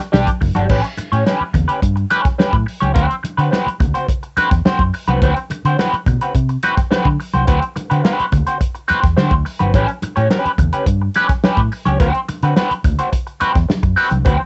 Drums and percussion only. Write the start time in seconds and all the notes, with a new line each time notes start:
0.00 closed hi-hat
0.13 snare, high conga
0.27 kick, closed hi-hat
0.41 kick, open hi-hat, high conga
0.55 closed hi-hat, high conga
0.69 kick, crash, muted conga
0.84 closed hi-hat
0.98 closed hi-hat, muted conga
1.13 closed hi-hat
1.27 snare, high conga
1.54 kick, closed hi-hat, muted conga, low conga
1.69 closed hi-hat
1.82 kick, closed hi-hat
1.97 closed hi-hat
2.11 closed hi-hat, muted conga
2.25 kick, snare, closed hi-hat
2.39 snare, high conga
2.53 kick, closed hi-hat
2.68 open hi-hat
2.82 closed hi-hat, high conga
2.96 kick, closed hi-hat, muted conga
3.11 closed hi-hat
3.25 closed hi-hat, muted conga
3.39 closed hi-hat
3.53 snare, high conga
3.68 closed hi-hat
3.80 kick, closed hi-hat, muted conga, low conga
3.95 closed hi-hat
4.08 kick, closed hi-hat
4.23 closed hi-hat
4.37 closed hi-hat, muted conga
4.51 kick, snare, closed hi-hat
4.65 snare, high conga
4.79 kick, closed hi-hat
4.94 open hi-hat
5.08 closed hi-hat, high conga
5.22 kick, closed hi-hat, muted conga
5.36 closed hi-hat
5.50 closed hi-hat, muted conga
5.65 closed hi-hat
5.79 snare, high conga
5.94 closed hi-hat
6.06 kick, closed hi-hat, muted conga, low conga
6.21 closed hi-hat
6.35 kick, closed hi-hat
6.49 closed hi-hat
6.63 closed hi-hat, muted conga
6.77 kick, snare, closed hi-hat
6.91 snare, high conga
7.05 kick
7.20 open hi-hat
7.34 closed hi-hat, high conga
7.47 kick, closed hi-hat, muted conga
7.62 closed hi-hat
7.76 closed hi-hat, muted conga
7.91 closed hi-hat
8.05 snare, high conga
8.20 closed hi-hat
8.32 kick, closed hi-hat, muted conga, low conga
8.47 closed hi-hat
8.61 kick, closed hi-hat
8.75 closed hi-hat
8.89 closed hi-hat, muted conga
9.03 kick, snare, closed hi-hat
9.17 snare, high conga
9.31 kick, closed hi-hat
9.46 open hi-hat
9.60 closed hi-hat, high conga
9.74 kick, closed hi-hat, muted conga
9.88 closed hi-hat
10.02 closed hi-hat, muted conga
10.17 closed hi-hat
10.31 snare, high conga
10.46 closed hi-hat
10.58 kick, closed hi-hat, muted conga, low conga
10.73 closed hi-hat
10.86 kick, closed hi-hat
11.14 closed hi-hat, muted conga
11.29 kick, snare, closed hi-hat
11.44 snare, high conga
11.57 kick, closed hi-hat
11.72 open hi-hat
11.86 closed hi-hat, high conga
12.00 kick, closed hi-hat, muted conga
12.14 closed hi-hat
12.29 closed hi-hat, muted conga
12.43 closed hi-hat
12.56 snare, high conga
12.71 closed hi-hat
12.84 kick, closed hi-hat, muted conga, low conga
12.99 closed hi-hat
13.13 kick, closed hi-hat
13.27 closed hi-hat
13.41 closed hi-hat, muted conga
13.55 kick, snare, closed hi-hat
13.70 snare, high conga
13.83 kick, closed hi-hat
13.98 open hi-hat
14.11 closed hi-hat, high conga
14.25 kick, closed hi-hat, muted conga